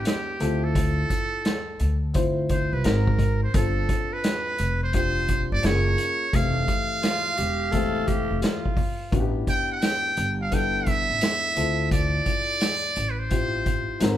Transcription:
Already playing: upright piano B3 D4 E4 G4
0.05 muted trumpet G4, snare, closed hi-hat
0.39 upright bass D2, upright piano C4 E4 F4 A4, closed hi-hat
0.64 muted trumpet A4
0.75 kick, closed hi-hat
1.10 kick, closed hi-hat
1.45 snare, closed hi-hat
1.80 upright bass D2, closed hi-hat
2.14 upright piano C4 E4 F4 C5, kick, closed hi-hat
2.49 muted trumpet C5, kick, closed hi-hat
2.73 upright bass C2, muted trumpet B4
2.84 upright bass G#1, upright piano C4 D#4 F#4 A#4, muted trumpet A#4, snare, closed hi-hat
3.07 kick
3.19 kick, closed hi-hat
3.43 muted trumpet C5
3.53 upright bass G1, upright piano C4 D4 F4 A4, muted trumpet A4, kick, closed hi-hat
3.89 kick, closed hi-hat
4.13 muted trumpet B4
4.24 snare, closed hi-hat
4.58 upright bass F1, closed hi-hat
4.83 muted trumpet C5
4.93 upright piano C4 D4 F4 G4, muted trumpet C5, kick, closed hi-hat
5.28 kick, closed hi-hat
5.52 upright bass G1, muted trumpet D5
5.63 upright bass F#1, upright piano A#3 C#4 F4 G#4, muted trumpet C#5, snare, closed hi-hat
5.98 closed hi-hat
6.32 upright bass F1, upright piano E3 A3 C4 G4, muted trumpet F5, kick, closed hi-hat
6.68 kick, closed hi-hat
7.03 tenor saxophone F4, snare, closed hi-hat
7.37 upright bass E1, tenor saxophone G4, closed hi-hat
7.72 upright piano E3 A3 C4 G4, tenor saxophone A4, kick, closed hi-hat
8.07 tenor saxophone G4, kick, closed hi-hat
8.31 upright bass F1
8.42 tenor saxophone F4, snare, closed hi-hat
8.66 kick
8.77 kick, open hi-hat
9.11 upright bass A1, upright piano B3 D4 E4 F#4, kick, closed hi-hat
9.20 upright piano G4
9.47 muted trumpet G5, kick, closed hi-hat
9.72 muted trumpet G5
9.82 snare, closed hi-hat
10.17 upright bass G1, closed hi-hat
10.42 muted trumpet F5
10.51 upright piano B3 D4 E4 A4, muted trumpet G5, kick, closed hi-hat
10.86 muted trumpet E5, kick, closed hi-hat
11.10 upright bass A1
11.21 snare, closed hi-hat
11.55 upright bass D2, upright piano C4 E4 F4 A4, closed hi-hat
11.91 muted trumpet D5, kick, closed hi-hat
12.26 kick, closed hi-hat
12.61 snare, closed hi-hat
12.96 upright bass A1, closed hi-hat
13.11 muted trumpet B4
13.19 muted trumpet C5
13.30 upright piano C4 E4 F4 G4, kick, closed hi-hat
13.66 kick, closed hi-hat
14.00 upright bass G#1, upright piano C4 D#4 F#4 A#4, snare, closed hi-hat

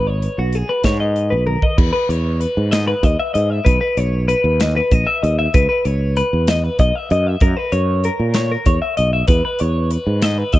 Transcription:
Already playing: fretless electric bass G#1
0.07 clean electric guitar C#5
0.22 closed hi-hat
0.38 fretless electric bass B1, clean electric guitar F#4
0.53 clean electric guitar G#4, closed hi-hat
0.69 clean electric guitar B4
0.84 fretless electric bass G#2, clean electric guitar C#5, kick, snare, closed hi-hat
1.00 clean electric guitar D#5
1.16 closed hi-hat
1.30 fretless electric bass B1, clean electric guitar B4
1.47 clean electric guitar A#4, high tom
1.62 clean electric guitar D#5, kick
1.78 fretless electric bass E2, clean electric guitar B4, kick, crash
1.93 clean electric guitar B4
2.09 fretless electric bass E2, clean electric guitar C#5, closed hi-hat
2.40 clean electric guitar B4, closed hi-hat
2.57 fretless electric bass G#2
2.71 clean electric guitar D#5, snare, closed hi-hat
2.88 clean electric guitar B4
3.03 fretless electric bass D#2, clean electric guitar D#5, kick, closed hi-hat
3.20 clean electric guitar E5
3.34 fretless electric bass G#2, clean electric guitar D#5, closed hi-hat
3.50 clean electric guitar E5
3.65 fretless electric bass B1, clean electric guitar B4, kick, closed hi-hat
3.81 clean electric guitar B4
3.97 fretless electric bass B1, clean electric guitar C#5, closed hi-hat
4.28 clean electric guitar B4, closed hi-hat
4.44 fretless electric bass D#2
4.60 clean electric guitar D#5, snare, closed hi-hat
4.76 clean electric guitar B4
4.91 fretless electric bass A#1, clean electric guitar D#5, kick, closed hi-hat
5.07 clean electric guitar E5
5.23 fretless electric bass D#2, clean electric guitar D#5, closed hi-hat
5.39 clean electric guitar E5
5.54 fretless electric bass C#2, clean electric guitar B4, kick, closed hi-hat
5.69 clean electric guitar B4
5.85 fretless electric bass C#2, clean electric guitar C#5, closed hi-hat
6.16 clean electric guitar B4, closed hi-hat
6.33 fretless electric bass E2
6.47 clean electric guitar D#5, snare, closed hi-hat
6.64 clean electric guitar B4
6.79 fretless electric bass B1, clean electric guitar D#5, kick, closed hi-hat
6.96 clean electric guitar E5
7.10 fretless electric bass F#2, clean electric guitar D#5, closed hi-hat
7.27 clean electric guitar E5
7.40 fretless electric bass F#2, clean electric guitar A#4, kick, closed hi-hat
7.57 clean electric guitar B4
7.72 fretless electric bass F#2, clean electric guitar C#5, closed hi-hat
8.04 clean electric guitar A#4, closed hi-hat
8.20 fretless electric bass A#2
8.34 clean electric guitar C#5, snare, closed hi-hat
8.52 clean electric guitar A#4
8.66 fretless electric bass E2, clean electric guitar C#5, kick, closed hi-hat
8.82 clean electric guitar E5
8.97 fretless electric bass B1, clean electric guitar D#5, closed hi-hat
9.13 clean electric guitar E5
9.28 fretless electric bass E2, clean electric guitar B4, kick, closed hi-hat
9.45 clean electric guitar B4
9.59 fretless electric bass E2, clean electric guitar C#5, closed hi-hat
9.90 clean electric guitar B4, closed hi-hat
10.07 fretless electric bass G#2
10.22 clean electric guitar D#5, snare, closed hi-hat
10.38 clean electric guitar B4
10.52 fretless electric bass D#2, clean electric guitar D#5, kick, closed hi-hat

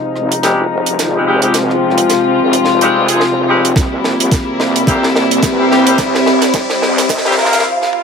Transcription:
Already playing: string section C3 F3 G#3 D#4, ambient pad C4 F4 G4 C5, riser
0.15 wobble bass G#1, cross-stick
0.32 ambient pad G5, closed hi-hat
0.43 wobble bass F1, horn section G3 G#3 C4 D#4 G4, snare, closed hi-hat
0.86 wobble bass F1, closed hi-hat
0.99 wobble bass G#1, snare, closed hi-hat
1.15 horn section G3 G#3 C4 D#4 G4
1.26 horn section G3 G#3 C4 D#4 G4
1.42 horn section G3 G#3 C4 D#4 G4, closed hi-hat
1.54 string section F4, snare, closed hi-hat
1.70 cross-stick
1.82 wobble bass D#1
1.90 cross-stick
1.98 closed hi-hat
2.09 snare, closed hi-hat
2.37 wobble bass G#1
2.53 closed hi-hat
2.65 wobble bass F1, snare
2.81 horn section G3 G#3 C4 D#4 G4, closed hi-hat
3.08 wobble bass A#1, horn section G#3 C4 D#4 G#4, closed hi-hat
3.20 snare
3.37 wobble bass F1
3.48 horn section G3 G#3 C4 D#4 G4
3.64 wobble bass F1, closed hi-hat
3.76 wobble bass C2, string section G3 A#3 E4, ambient pad C4, kick, snare, closed hi-hat
4.04 snare
4.20 wobble bass C2, closed hi-hat
4.32 kick, snare, closed hi-hat
4.48 ambient pad G4
4.59 wobble bass E2, snare
4.76 closed hi-hat
4.87 wobble bass C2, horn section G3 A#3 C4 E4 G4, kick, closed hi-hat
5.03 snare
5.16 snare
5.31 wobble bass C2, closed hi-hat
5.43 wobble bass E2, kick, snare, closed hi-hat
5.59 horn section G3 A#3 C4 E4 G4
5.70 horn section G3 A#3 C4 E4 G4, snare
5.87 horn section G3 A#3 C4 E4 G4, closed hi-hat
5.98 string section C4, kick, snare, closed hi-hat
6.15 snare
6.26 wobble bass A#1, snare
6.42 snare, closed hi-hat
6.54 kick, snare, closed hi-hat
6.70 snare
6.82 wobble bass E2, snare
6.98 snare, closed hi-hat
7.09 wobble bass C2, kick, snare, closed hi-hat, swell
7.18 snare
7.25 horn section G3 A#3 C4 E4 G4, snare
7.31 snare
7.37 wobble bass C2, horn section A#3 C4 E4 A#4, snare
7.45 snare
7.53 snare, closed hi-hat
7.59 snare
7.82 snare
7.93 mid tom

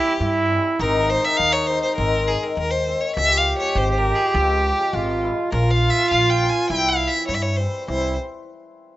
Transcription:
Already playing: trombone E4, violin G4
0.03 hammered dulcimer E3 G3 C4
0.20 upright bass G2, trombone E4
0.49 hammered dulcimer E3 G3 C4
0.79 upright bass G#1, hammered dulcimer D#3 G#3 C4, trombone D#4, violin A#4
1.10 violin C5
1.23 hammered dulcimer D#3 G#3 C4, violin E5
1.37 upright bass D#2, violin F5
1.53 violin C#5
1.67 hammered dulcimer D#3 G#3 C4, violin C5
1.83 violin C5
1.96 upright bass G#1, hammered dulcimer D#3 G#3 C4, violin A#4
2.28 violin G#4
2.43 hammered dulcimer D#3 G#3 C4, violin A#4
2.57 upright bass D#2, violin A#4
2.71 violin C5
2.86 hammered dulcimer D#3 G#3 C4
3.01 violin C#5
3.15 upright bass C#2, hammered dulcimer F3 G#3 C#4, trombone G4, violin E5
3.38 violin F5
3.58 hammered dulcimer F3 G#3 C#4, violin C#5
3.75 upright bass G#1, violin C5
3.92 violin C5
3.98 violin A#4
4.06 hammered dulcimer F3 G#3 C#4
4.15 violin G#4
4.34 upright bass C#2, hammered dulcimer F3 G#3 C4, violin G4
4.78 hammered dulcimer F3 G#3 C#4
4.93 upright bass G#1, trombone F4
5.23 hammered dulcimer F3 G#3 E4
5.51 upright bass A#1, hammered dulcimer F3 A#3 C#4, trombone F4, violin A#4
5.71 violin F5
5.90 violin E5
5.96 hammered dulcimer F3 A#3 C#4
6.10 upright bass A#1, violin F5
6.30 violin G5
6.42 hammered dulcimer F3 A#3 C#4
6.49 violin G#5
6.70 upright bass C2, hammered dulcimer E3 G3 C4, trombone E4, violin G5
6.89 violin F5
7.08 violin E5
7.15 hammered dulcimer E3 G3 C4
7.27 upright bass G2, violin C#5
7.35 violin E5
7.42 violin C#5
7.57 hammered dulcimer E3 G3 C4, violin C5
7.87 upright bass C2, hammered dulcimer E3 G3 C4, trombone E4, violin C5

